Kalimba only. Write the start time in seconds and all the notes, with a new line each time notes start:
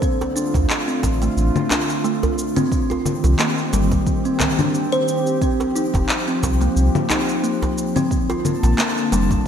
0.02 C4
0.36 D4
0.88 C4
1.22 A3
1.71 D4
2.04 A3
2.56 C4
2.90 F4
3.39 A#3
3.73 G3
4.25 C4
4.59 D4
4.92 C5
5.42 C4
5.76 D#4
6.28 C4
6.62 A#3
7.10 D#4
7.44 A#3
7.96 C4
8.30 F4
8.78 A#3
9.12 G3